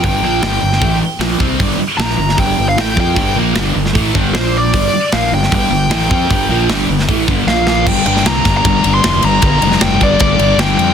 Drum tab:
CC |----------------|----------------|----------------|----------------|
RD |----------------|----------------|----------------|----------------|
HH |o---o---o---o---|o-------o---o---|o---o---o---o---|o---o---o---o---|
SD |----o--o----o---|----oo-o----o---|----o--o----o---|----o--o----o---|
BD |o-------o-----o-|o-------o-----o-|o-------o-o-----|o-------o-----o-|

CC |----------------|x---------------|----------------|
RD |----------------|--x-x-x-x-x-x-x-|x-x-x-x-x-x-x-x-|
HH |o---o---o-------|----------------|----------------|
SD |----o--o----o-o-|---oo-o-----o---|---oo-------o---|
BD |o-------o-o-----|o-----o-o-------|o-----o-o-------|